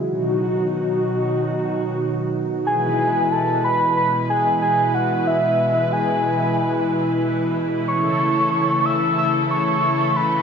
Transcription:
<<
  \new Staff \with { instrumentName = "Soft synth lead" } { \time 4/4 \key e \major \tempo 4 = 92 fis'2. r4 | gis''4 a''8 b''8 b''8 gis''8 gis''8 fis''8 | e''4 gis''4. r4. | cis'''4. e'''8 e'''8 cis'''4 b''8 | }
  \new Staff \with { instrumentName = "Analog synth pad" } { \clef bass \time 4/4 \key e \major << { <b, fis fis'>1 | <b, gis b'>1~ | <b, gis b'>1 | <cis a a'>1 | } \\ { <dis dis'>1 | <e e'>1~ | <e e'>1~ | <e e'>1 | } >> }
>>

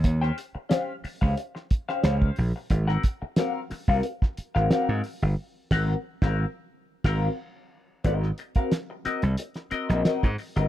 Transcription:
<<
  \new Staff \with { instrumentName = "Clean electric guitar" } { \time 4/4 \key aes \major \tempo 4 = 90 r16 <des' g' c'' g''>16 r8 <des' g' c'' f''>16 r8 <des' g' c'' f''>16 r8. <des' g' c'' f''>16 <des' g' c'' f''>8 r8 | r16 <c' ges' bes' ges''>16 r8 <c' ges' bes' f''>16 r8 <c' ges' bes' f''>16 r8. <c' ges' bes' f''>16 <c' ges' bes' f''>8 r8 | r8 <c' ges' bes' ges''>8 r16 <c' ges' bes' f''>8 r8. <c' ges' bes' f''>8 r4 | <c' ges' bes' ees''>16 r8 <c' ges' bes' f''>16 r8 <c' ges' bes' ees''>16 r8. <c' ges' bes' ees''>16 <c' ges' bes' ees''>16 <c' ges' bes' ees''>16 r8 <c' ges' bes' ees''>16 | }
  \new Staff \with { instrumentName = "Slap bass" } { \clef bass \time 4/4 \key aes \major ees,8 r4 r16 des,16 r4 des,8 bes,,16 r16 | aes,,8 r4 r16 c,16 r8. aes,,16 r16 aes,16 r16 g,,16 | r8 aes,,8 r16 aes,,8 r8. aes,,8 r4 | aes,,8 r4 r16 c,16 r8. bes,,16 r16 aes,16 r16 g,,16 | }
  \new DrumStaff \with { instrumentName = "Drums" } \drummode { \time 4/4 <hh bd>16 sn16 hh8 <hh sn>8 hho16 bd16 hh16 sn16 <hh bd>16 sn16 <hh sn>16 bd16 hho8 | <hh bd>16 sn16 <hh bd>8 <hh sn>8 <hho sn>16 bd16 hh16 <bd sn>16 hh16 sn16 <hh sn>8 hho8 | r8 <cymc bd sn>8 r16 <bd sn>8. r8 <cymc bd sn>8 r4 | <hh bd>16 sn16 hh16 <hh bd>16 <hh sn>8 <hh sn>16 hh16 hh16 <hh sn>16 hh16 <hh sn>16 <hh sn>16 <hh bd>16 hho16 hh16 | }
>>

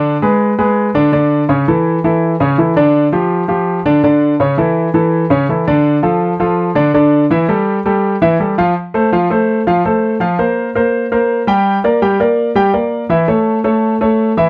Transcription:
\new Staff \with { instrumentName = "Grand piano" } { \time 4/4 \key a \phrygian \tempo 4 = 165 <d d' d''>8 <gis gis' b'>4 <gis gis' b'>4 <d d' d''>8 <d d' d''>4 | <cis cis' cis''>8 <e e' a'>4 <e e' a'>4 <cis cis' cis''>8 <e e' a'>8 <d d' d''>8~ | <d d' d''>8 <f f' g'>4 <f f' g'>4 <d d' d''>8 <d d' d''>4 | <cis cis' cis''>8 <e e' a'>4 <e e' a'>4 <cis cis' cis''>8 <e e' a'>8 <d d' d''>8~ |
<d d' d''>8 <f f' a'>4 <f f' a'>4 <d d' d''>8 <d d' d''>4 | <e e' e''>8 <g g' a'>4 <g g' a'>4 <e e' e''>8 <g g' a'>8 <f f' f''>8 | r8 <a a' c''>8 <f f' f''>8 <a a' c''>4 <f f' f''>8 <a a' c''>4 | <f f' f''>8 <bes bes' c''>4 <bes bes' c''>4 <bes bes' c''>4 <g g' g''>8~ |
<g g' g''>8 <bes bes' d''>8 <g g' g''>8 <bes bes' d''>4 <g g' g''>8 <bes bes' d''>4 | <e e' e''>8 <a a' cis''>4 <a a' cis''>4 <a a' cis''>4 <e e' e''>8 | }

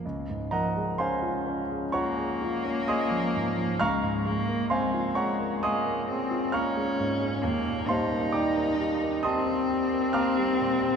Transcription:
<<
  \new Staff \with { instrumentName = "Grand piano" } { \time 4/4 \key bes \phrygian \tempo 4 = 66 r8 <bes' ees'' ges'' bes''>8 <c'' f'' aes'' c'''>4 <des'' ges'' bes'' des'''>4 <ees'' aes'' c''' ees'''>4 | <f'' bes'' des''' f'''>4 <c'' f'' aes'' c'''>8 <des'' ges'' bes'' des'''>8 <ees'' aes'' c''' ees'''>4 <f'' bes'' des''' f'''>4 | r8 <c'' f'' a'' c'''>8 <d'' g'' bes'' d'''>4 <ees'' a'' c''' ees'''>4 <f'' bes'' d''' f'''>4 | }
  \new Staff \with { instrumentName = "Grand piano" } { \time 4/4 \key bes \phrygian des,16 aes,16 f16 aes16 des'16 f'16 des'16 aes'16 f'16 aes'16 f'16 des'16 aes16 f16 aes,16 f16 | des,16 aes,16 aes16 bes16 c'16 f'16 aes'16 bes'16 aes'16 bes'16 aes'16 f'16 bes16 aes16 aes,16 aes16 | ees,16 bes,16 g16 bes16 ees'16 bes'16 g'16 bes'16 g'16 bes'16 g'16 bes'16 bes16 g16 bes,16 g16 | }
  \new Staff \with { instrumentName = "Cello" } { \time 4/4 \key bes \phrygian r2 bes2 | aes8 bes8 aes4 bes8 c'8 des'4 | bes8 ees'4. c'2 | }
>>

